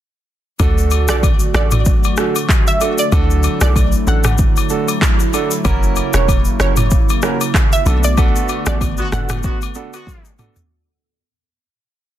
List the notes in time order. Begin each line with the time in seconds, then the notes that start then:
0.60 D2 D3 F#3 A3 D4 F#4 A4, kick, high agogo, shaker
0.78 shaker
0.91 high agogo, shaker
1.08 B1 A3 D4 F#4 A4 D5, cross-stick, shaker
1.23 kick, high agogo, shaker
1.39 shaker
1.54 A1 A3 D4 F#4 A4 D5, cross-stick, shaker
1.71 mid tom, high agogo, shaker
1.85 kick, shaker
2.04 high agogo, shaker
2.17 A3 D4 F#4 A4, cross-stick, shaker
2.36 high agogo, shaker
2.49 kick, cross-stick, clap, shaker
2.67 E5, shaker
2.81 A3 D4 F#4 A4, high agogo, shaker
2.98 D5, shaker
3.12 D2 A3 D4 E4 F#4 A4, kick, high agogo, shaker
3.30 shaker
3.43 high agogo, shaker
3.61 B1 A3 D4 F#4 A4 D5, cross-stick, shaker
3.76 kick, high agogo, shaker
3.92 shaker
4.07 A1 A3 D4 F#4 A4 F#5, shaker
4.24 cross-stick, mid tom, high agogo, shaker
4.38 kick, shaker
4.56 high agogo, shaker
4.69 A3 D4 F#4 A4, shaker
4.88 high agogo, shaker
5.02 kick, cross-stick, clap, shaker
5.20 shaker
5.33 A3 D4 F#4 A4, high agogo, shaker
5.51 shaker
5.65 F#1 C#3 A#3 C#4 E4 F#4 A#4, kick, high agogo, shaker
5.83 shaker
5.96 high agogo, shaker
6.14 E1 C#4 E4 F#4 A#4 C#5, cross-stick, shaker
6.28 kick, high agogo, shaker
6.45 shaker
6.60 F#1 C#4 E4 F#4 A#4 C#5, cross-stick, shaker
6.77 mid tom, high agogo, shaker
6.91 kick, shaker
7.09 high agogo, shaker
7.22 C#4 E4 F#4 A#4, cross-stick, shaker
7.41 high agogo, shaker
7.54 kick, cross-stick, clap, shaker
7.72 E5, shaker
7.86 B1 D3 A3 B3 D4 F#4 A4, high agogo, shaker
8.04 D5, shaker
8.17 B3 D4 F#4 A4, kick, high agogo, shaker
8.36 shaker
8.48 high agogo, shaker
8.66 A1 B3 D4 F#4 A4 D5, cross-stick, shaker
8.81 kick, high agogo, shaker
8.97 D3 B3 F#4, shaker
9.12 F#1 B3 D4 F#4 A4 F#5, cross-stick, mid tom, shaker
9.29 cross-stick, mid tom, high agogo, shaker
9.43 D3 B3 F#4, kick, shaker
9.62 high agogo, shaker
9.75 B3 D4 F#4 A4, shaker
9.93 D3 B3 F#4, high agogo, shaker
10.07 kick, high tom, shaker
10.25 shaker
10.38 B3 D4 F#4 A4, mid tom, high agogo, shaker
10.56 floor tom, shaker